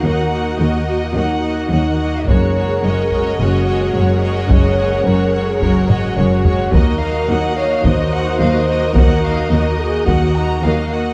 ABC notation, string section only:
X:1
M:4/4
L:1/8
Q:1/4=108
K:Ebm
V:1 name="String section"
[EGBg]8 | [DABg]8- | [DABg]8 | [EGBe]8- |
[EGBe]8 |]